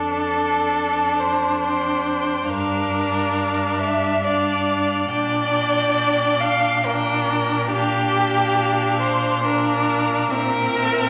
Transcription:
Already playing: F2 D4 A4 A5
1.19 C5
1.62 C5 G5
2.49 G2 D4 A#4 F5
3.79 E5
4.23 D4 D5 F5
5.08 A#2 D4 D5 G5
6.40 F5
6.85 D4 A#4 G5
7.70 D4 G4 F5
9.01 C5
9.45 D4 A#4 F5
10.31 A#2 C4 A#4 E5

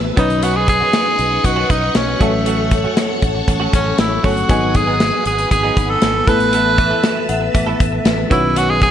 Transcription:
Already playing: A1 A3 B3 E4 B4 E5 A5 E6
0.04 muted clean electric guitar stroke
0.16 B1 D#3 F#3 B3 C#4 D#4 F#4 B4 D#5 F#5 C#6, kick, closed hi-hat
0.29 muted clean electric guitar stroke, closed hi-hat
0.42 D#3 B3 C#4 F#4, closed hi-hat
0.56 G#4
0.68 G#4, muted clean electric guitar stroke, kick, closed hi-hat
0.80 D#3 B3 C#4 F#4
0.93 muted clean electric guitar stroke, snare, closed hi-hat
1.06 muted clean electric guitar stroke
1.19 B1, closed hi-hat
1.31 muted clean electric guitar stroke
1.44 B1 F#4, muted clean electric guitar stroke, kick, closed hi-hat
1.56 D#3 B3 C#4 F#4
1.69 B1 D#4, muted clean electric guitar stroke, kick, closed hi-hat
1.82 muted clean electric guitar stroke
1.95 B1 C#4, muted clean electric guitar stroke, snare, closed hi-hat
2.08 muted clean electric guitar stroke
2.19 A1 F#3 A3 C#4 F#4 A4 C#5, kick, closed hi-hat
2.33 muted clean electric guitar stroke
2.46 F#3 A3 C#4 F#4, closed hi-hat
2.71 muted clean electric guitar stroke, kick, closed hi-hat
2.84 F#3 A3 C#4 F#4
2.97 muted clean electric guitar stroke, snare, closed hi-hat
3.09 muted clean electric guitar stroke
3.22 A1, kick, closed hi-hat
3.35 muted clean electric guitar stroke
3.47 A1, muted clean electric guitar stroke, kick, closed hi-hat
3.60 F#3 A3 C#4 F#4
3.73 A1 C#4, muted clean electric guitar stroke, kick, closed hi-hat
3.86 muted clean electric guitar stroke
3.98 A1 E4, muted clean electric guitar stroke, snare, closed hi-hat
4.11 muted clean electric guitar stroke
4.23 G1 F#3 A3 C#4 F#4 A4, kick, open hi-hat
4.36 muted clean electric guitar stroke, closed hi-hat
4.48 G#1 F#3 B3 D#4 G#4 B4 G#5 D#6, kick, closed hi-hat
4.75 G#4, muted clean electric guitar stroke, kick, closed hi-hat
4.87 F#3 B3 D#4 G#4
5.00 snare, closed hi-hat
5.13 muted clean electric guitar stroke
5.26 G#1 G#4, closed hi-hat
5.38 muted clean electric guitar stroke, closed hi-hat
5.51 G#1 G#4, muted clean electric guitar stroke, kick, closed hi-hat
5.63 F#3 B3 D#4 G#4
5.77 G#1, kick, closed hi-hat
5.89 A4, muted clean electric guitar stroke
6.02 G#1, muted clean electric guitar stroke, snare, closed hi-hat
6.15 muted clean electric guitar stroke
6.26 A1 E3 A3 B3 E4 A4 B4 E5 A5 E6, kick, closed hi-hat
6.40 muted clean electric guitar stroke, closed hi-hat
6.52 A3 B3 E4 A4, closed hi-hat
6.78 E5, muted clean electric guitar stroke, kick, closed hi-hat
6.91 A3 B3 E4 A4
7.03 muted clean electric guitar stroke, snare, closed hi-hat
7.16 muted clean electric guitar stroke
7.29 A1 F#5, closed hi-hat
7.41 muted clean electric guitar stroke
7.54 A1 E5, muted clean electric guitar stroke, kick, closed hi-hat
7.67 A3 B3 E4 A4
7.80 A1, muted clean electric guitar stroke, kick, closed hi-hat
7.92 muted clean electric guitar stroke
8.05 A1, muted clean electric guitar stroke, snare, closed hi-hat
8.18 muted clean electric guitar stroke
8.29 B1 D#3 B3 C#4 E4 F#4 B4 D#5 F#5 C#6, kick, closed hi-hat
8.43 muted clean electric guitar stroke
8.56 D#3 B3 C#4 F#4, closed hi-hat
8.70 G#4
8.81 G#4, muted clean electric guitar stroke, kick, closed hi-hat

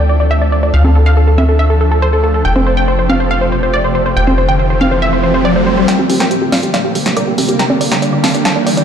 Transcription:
Already playing: D2
0.09 D5, closed hi-hat
0.20 D5, closed hi-hat
0.31 E5
0.42 D5
0.52 D5, closed hi-hat
0.63 D5, closed hi-hat
0.74 D2 F5, closed hi-hat
0.84 A4, high conga
0.95 A4, closed hi-hat
1.06 F5, closed hi-hat
1.17 A4, closed hi-hat
1.28 A4
1.38 E5, closed hi-hat, high conga
1.49 A4, closed hi-hat
1.59 E5, closed hi-hat
1.70 A4
1.81 A4, closed hi-hat
1.92 A4, closed hi-hat
2.02 C5, closed hi-hat
2.13 A4
2.24 A4, closed hi-hat
2.34 A4, closed hi-hat
2.45 F1 G5, closed hi-hat, riser
2.56 C5, high conga
2.67 C5, closed hi-hat
2.77 G5, closed hi-hat
2.88 C5, closed hi-hat
2.99 C5
3.10 F5, closed hi-hat, high conga
3.20 C5, closed hi-hat
3.31 F5, closed hi-hat
3.41 C5
3.52 C5, closed hi-hat
3.63 C5, closed hi-hat
3.74 D5, closed hi-hat
3.84 C5
3.95 C5, closed hi-hat
4.06 C5, closed hi-hat
4.17 F1 G5, closed hi-hat
4.27 C5, high conga
4.38 C5, closed hi-hat
4.49 G5, closed hi-hat
4.59 C5, closed hi-hat
4.70 C5
4.81 F5, closed hi-hat, high conga
4.91 C5, closed hi-hat
5.02 E5, closed hi-hat
5.13 C5
5.23 C5, closed hi-hat
5.34 C5, closed hi-hat
5.45 D5, closed hi-hat
5.56 C5
5.67 C5, closed hi-hat
5.77 C5, closed hi-hat
5.88 A#4 G5, snare, closed hi-hat, riser
5.99 G1 G4, high conga
6.10 G1 G4, open hi-hat, high conga
6.20 G1 A#4 G5, snare, closed hi-hat
6.31 G4, closed hi-hat
6.42 G1 G4
6.52 G1 D5 F5, snare, open hi-hat, high conga
6.63 G1 G4, closed hi-hat
6.74 D5 F5, snare, closed hi-hat
6.85 G1 G4
6.95 G1 G4, open hi-hat
7.06 G1 G4, snare, closed hi-hat
7.17 A#4 D5, closed hi-hat
7.27 G1 G4
7.38 A1 G4, open hi-hat, high conga
7.49 G1 G4, closed hi-hat
7.59 G5 A#5, snare, closed hi-hat
7.70 G1 D5, high conga
7.81 G1 D5, open hi-hat
7.92 G1 G5 A#5, snare, closed hi-hat
8.02 D5, closed hi-hat
8.13 G1 D5
8.24 G1 F5 A5, snare, open hi-hat, high conga
8.34 G1 D5, closed hi-hat
8.45 F5 A5, snare, closed hi-hat
8.56 G1 D5
8.66 G1 D5, open hi-hat
8.77 G1 D5, closed hi-hat

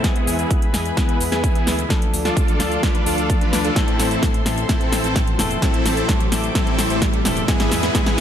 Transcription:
Already playing: E5, riser
0.03 E3 G#3 B3 E4 G#4 B4 B5, kick, snare, closed hi-hat, shaker
0.16 closed hi-hat
0.27 E2, open hi-hat, shaker
0.39 B3 E4 G#4, closed hi-hat, shaker
0.51 kick, closed hi-hat, shaker
0.62 closed hi-hat
0.73 E2 E3 G#3 B3 G#4, snare, open hi-hat, shaker
0.86 closed hi-hat, shaker
0.97 B3 E4 B4, kick, snare, closed hi-hat, shaker
1.09 closed hi-hat
1.20 E2, open hi-hat, shaker
1.32 E2 B3 E4 G#4, snare, closed hi-hat, shaker
1.44 B3 E4 G#4, kick, closed hi-hat, shaker
1.55 B3 E4 G#4, closed hi-hat
1.67 D2, snare, open hi-hat, shaker
1.79 closed hi-hat, shaker
1.89 F3 A3 D4 A4 D5 F5 D6, kick, snare, closed hi-hat, shaker
2.02 closed hi-hat
2.13 D2, open hi-hat, shaker
2.25 D4 F4 A4, snare, closed hi-hat, shaker
2.37 kick, closed hi-hat, shaker
2.48 closed hi-hat, shaker
2.59 D2 F3 A3 D4 A4, snare, open hi-hat, shaker
2.72 closed hi-hat, shaker
2.83 D4 F4 B4, kick, snare, closed hi-hat, shaker
2.95 closed hi-hat
3.06 D2 D4 F4 A4, open hi-hat, shaker
3.18 D2, closed hi-hat, shaker
3.30 kick, closed hi-hat, shaker
3.41 D4 F4 B4, closed hi-hat
3.53 D2, snare, open hi-hat, shaker
3.64 D4 F4 A4, closed hi-hat, shaker
3.75 A2 E3 A3 C4 E4 A4 C5 E5 C6, kick, snare, closed hi-hat, shaker
3.88 closed hi-hat
3.99 A1, snare, open hi-hat, shaker
4.11 C4 E4 A4, closed hi-hat, shaker
4.23 kick, snare, closed hi-hat, shaker
4.34 closed hi-hat
4.45 A1 A2 E3 A3 C4 A4, snare, open hi-hat, shaker
4.58 closed hi-hat, shaker
4.68 A2 E3 A3 C4 E4 A4, kick, snare, closed hi-hat, shaker
4.81 closed hi-hat
4.92 A1, snare, open hi-hat, shaker
5.04 A1 C4 E4 A4, closed hi-hat, shaker
5.16 kick, snare, closed hi-hat, shaker
5.27 closed hi-hat
5.38 E1 A2 E3 A3 C4 A4, snare, open hi-hat, shaker
5.51 closed hi-hat, shaker
5.61 A2 E3 A3 C4 E4 A4 D6, kick, snare, closed hi-hat, shaker
5.74 closed hi-hat
5.85 A1, snare, open hi-hat, shaker
5.97 C4 E4 A4, closed hi-hat, shaker
6.09 kick, snare, closed hi-hat, shaker
6.20 closed hi-hat
6.31 A1 A2 E3 A3 C4 A4, snare, open hi-hat, shaker
6.44 closed hi-hat, shaker
6.54 A2 E3 A3 C4 E4 A4, kick, snare, closed hi-hat, shaker
6.67 closed hi-hat
6.78 A1, snare, open hi-hat, shaker
6.90 A1 C4 E4 A4, closed hi-hat, shaker
7.02 kick, snare, closed hi-hat, shaker
7.13 closed hi-hat
7.24 E1 A2 E3 A3 C4 A4, snare, open hi-hat, shaker
7.37 closed hi-hat, shaker
7.47 G#2 E3 G#3 B3 E4 G#4 B4 B5, kick, snare, closed hi-hat, shaker
7.60 snare, closed hi-hat
7.71 E2, snare, open hi-hat, shaker
7.83 B3 E4 G#4, snare, closed hi-hat, shaker
7.94 G#2 E3 G#3 B3 E4 G#4, kick, snare, closed hi-hat, shaker
8.06 snare, closed hi-hat

